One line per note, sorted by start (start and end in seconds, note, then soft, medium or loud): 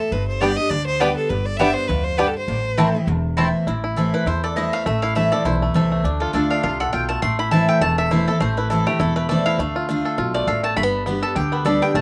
0.00 0.11 A2 medium
0.00 0.13 A4 medium
0.11 0.55 G1 medium
0.11 0.69 G2 medium
0.11 0.27 B4 medium
0.28 0.42 C5 medium
0.40 0.57 G3 medium
0.40 0.51 B3 medium
0.40 0.49 B3 medium
0.40 0.58 B3 medium
0.40 0.49 D4 medium
0.40 0.58 D4 medium
0.40 0.51 G4 loud
0.40 0.49 G4 medium
0.40 0.56 G4 loud
0.40 0.58 D5 medium
0.40 0.52 D5 loud
0.40 0.52 G5 loud
0.56 0.71 D4 soft
0.56 0.70 G4 medium
0.56 0.71 D#5 loud
0.69 1.14 D2 medium
0.69 1.28 D3 medium
0.69 0.86 D5 loud
0.87 1.02 C5 medium
1.00 1.29 G3 medium
1.00 1.10 B3 loud
1.00 1.08 B3 medium
1.00 1.29 B3 medium
1.00 1.08 D4 medium
1.00 1.30 D4 medium
1.00 1.11 G4 medium
1.00 1.08 G4 medium
1.00 1.30 G4 medium
1.00 1.16 B4 loud
1.00 1.11 D5 loud
1.00 1.11 G5 medium
1.17 1.31 A4 medium
1.29 1.73 G1 medium
1.29 1.87 G2 medium
1.29 1.47 B4 medium
1.45 1.58 D5 medium
1.57 1.88 G3 medium
1.57 1.70 B3 loud
1.57 1.88 B3 medium
1.57 1.88 D4 loud
1.57 1.70 G4 loud
1.57 1.70 D5 loud
1.57 1.75 E5 loud
1.57 1.70 G5 loud
1.61 1.68 B3 medium
1.61 1.68 D4 medium
1.61 1.89 G4 loud
1.61 1.68 G4 medium
1.73 1.89 C5 loud
1.87 2.32 D2 loud
1.87 2.17 F2 medium
1.87 2.05 B4 medium
2.04 2.19 C5 loud
2.17 2.47 G2 medium
2.17 2.29 B3 loud
2.17 2.26 B3 medium
2.17 2.26 D4 medium
2.17 2.29 G4 loud
2.17 2.26 G4 medium
2.17 2.29 B4 medium
2.17 2.29 D5 loud
2.17 2.29 G5 loud
2.27 2.37 A4 medium
2.38 3.09 C5 medium
2.48 2.91 A1 medium
2.48 3.05 A2 medium
2.78 2.94 E3 medium
2.78 2.85 A3 medium
2.78 2.94 A3 loud
2.78 2.88 C4 loud
2.78 2.94 C4 medium
2.78 2.88 E4 loud
2.78 2.81 E4 medium
2.78 2.93 E4 loud
2.78 2.88 C5 medium
2.78 2.88 A5 loud
2.95 3.08 C4 medium
2.95 3.07 E4 medium
3.07 3.50 E1 medium
3.07 3.64 E2 medium
3.37 3.65 E3 medium
3.37 3.66 A3 medium
3.37 3.45 A3 medium
3.37 3.47 C4 loud
3.37 3.66 C4 medium
3.37 3.47 E4 loud
3.37 3.40 E4 medium
3.37 3.66 E4 medium
3.37 3.48 C5 medium
3.37 3.48 A5 medium
3.67 4.10 A1 medium
3.67 4.24 A2 medium
3.67 3.83 E4 medium
3.84 4.13 E4 medium
3.96 4.25 E3 medium
3.96 4.25 A3 medium
3.96 4.26 C4 loud
3.96 4.26 E4 loud
3.96 4.43 A4 medium
4.14 4.26 E4 medium
4.14 4.26 B4 medium
4.26 4.69 E2 medium
4.26 4.83 E2 medium
4.26 4.55 E4 medium
4.26 4.43 C5 medium
4.44 5.32 A4 medium
4.44 4.56 D5 medium
4.56 4.84 E3 medium
4.56 4.85 A3 medium
4.56 4.85 C4 medium
4.56 4.99 E4 medium
4.56 4.85 E4 loud
4.56 4.72 D#5 medium
4.73 4.86 A3 medium
4.73 4.85 F5 loud
4.86 5.29 A1 medium
4.86 5.43 A2 medium
4.86 5.16 A3 medium
4.86 5.02 E5 medium
5.02 5.42 E4 medium
5.02 5.15 F5 loud
5.15 5.31 E3 medium
5.15 5.62 A3 medium
5.15 5.32 A3 medium
5.15 5.32 C4 medium
5.15 5.31 E4 loud
5.15 5.31 E5 medium
5.32 5.45 C4 medium
5.32 5.44 E4 medium
5.32 5.75 A4 medium
5.32 5.44 D5 medium
5.45 5.70 B1 medium
5.45 6.02 E2 medium
5.45 5.88 E4 medium
5.45 5.55 C5 medium
5.62 5.91 A3 medium
5.74 6.00 C2 medium
5.74 6.03 E3 medium
5.74 6.03 A3 medium
5.74 6.03 C4 medium
5.74 6.04 E4 loud
5.74 6.34 A4 medium
5.92 7.10 A3 medium
6.04 6.25 D2 medium
6.04 6.32 D3 medium
6.04 6.47 D4 medium
6.20 6.61 F4 medium
6.20 6.33 A4 medium
6.33 6.59 D2 medium
6.33 6.62 D3 medium
6.33 6.62 A3 medium
6.33 6.62 D4 medium
6.33 6.63 F4 loud
6.33 6.80 A4 medium
6.33 6.49 D5 medium
6.50 6.90 D4 medium
6.50 6.62 F5 medium
6.63 6.89 C2 medium
6.63 6.91 C3 medium
6.63 6.92 F4 medium
6.63 6.79 F5 medium
6.80 7.68 A4 medium
6.80 6.92 F#5 loud
6.93 7.18 B1 medium
6.93 7.21 B2 medium
6.93 7.22 F4 medium
6.93 7.08 G5 medium
7.09 7.22 A3 medium
7.09 7.22 A5 loud
7.22 7.65 A1 medium
7.22 7.79 A2 medium
7.22 7.81 A3 medium
7.22 7.38 C6 medium
7.39 7.51 E4 medium
7.39 7.51 B5 loud
7.51 7.80 E3 medium
7.51 7.80 A3 medium
7.51 7.80 C4 loud
7.51 7.95 E4 medium
7.51 7.81 E4 loud
7.51 7.68 A5 medium
7.69 7.98 A4 medium
7.69 7.81 G5 loud
7.81 8.24 E1 medium
7.81 8.38 E2 medium
7.81 8.40 A3 medium
7.81 7.97 A5 loud
7.98 8.28 A4 medium
7.98 8.11 E5 loud
8.11 8.27 E3 medium
8.11 8.27 A3 medium
8.11 8.28 C4 medium
8.11 8.54 E4 medium
8.11 8.27 E4 medium
8.11 8.27 C5 medium
8.28 8.42 C4 medium
8.28 8.40 E4 medium
8.28 8.40 A4 medium
8.28 9.29 A4 medium
8.40 8.83 A1 medium
8.40 8.98 A2 medium
8.40 8.83 A3 medium
8.40 8.56 C5 loud
8.57 8.69 E4 medium
8.57 8.70 B4 medium
8.70 8.86 E3 medium
8.70 8.87 A3 loud
8.70 8.87 C4 medium
8.70 8.98 E4 medium
8.70 8.86 E4 medium
8.70 8.86 A4 medium
8.87 9.15 A3 medium
8.87 9.01 C4 medium
8.87 9.00 E4 medium
8.87 8.99 G4 medium
8.99 9.43 E1 loud
8.99 9.57 E2 medium
8.99 9.42 E4 medium
8.99 9.16 A4 medium
9.16 9.56 A3 medium
9.16 9.29 B4 medium
9.29 9.58 E3 medium
9.29 9.58 A3 medium
9.29 9.58 C4 loud
9.29 9.59 E4 loud
9.29 9.59 A4 medium
9.29 9.45 D5 medium
9.46 9.59 E4 medium
9.46 9.85 F5 loud
9.58 10.01 D2 medium
9.58 9.87 D3 medium
9.58 9.88 A3 medium
9.76 10.16 F4 medium
9.89 10.17 D3 loud
9.89 10.31 A3 medium
9.89 10.17 A3 medium
9.89 10.18 D4 loud
9.89 10.18 F4 medium
10.05 10.45 A4 medium
10.18 10.43 B1 medium
10.18 10.46 B2 medium
10.18 10.61 F4 medium
10.34 10.62 A3 medium
10.34 10.47 D5 medium
10.47 10.72 A1 medium
10.47 10.76 A2 medium
10.47 10.77 A4 medium
10.47 10.63 F5 medium
10.63 10.75 A3 medium
10.63 10.76 A5 loud
10.76 11.20 G1 medium
10.76 11.34 G2 medium
10.76 10.83 A3 medium
10.76 11.20 B5 loud
10.83 11.05 B3 medium
11.06 11.35 G3 medium
11.06 11.49 B3 medium
11.06 11.35 B3 loud
11.06 11.36 D4 medium
11.06 11.36 G4 loud
11.22 11.63 A4 medium
11.22 11.36 A5 medium
11.35 11.79 D2 medium
11.35 11.93 D3 medium
11.35 11.79 G4 medium
11.35 11.52 G5 medium
11.52 11.81 B3 medium
11.52 11.65 B4 medium
11.65 11.81 G3 medium
11.65 11.81 B3 loud
11.65 11.82 D4 loud
11.65 11.81 G4 loud
11.65 11.95 A4 medium
11.65 11.82 D5 medium
11.82 11.95 B3 medium
11.82 11.96 D4 medium
11.82 11.95 G4 medium
11.82 11.95 G5 loud
11.94 12.01 A1 medium
11.94 12.01 A2 medium
11.94 12.01 A3 medium
11.94 12.01 A5 medium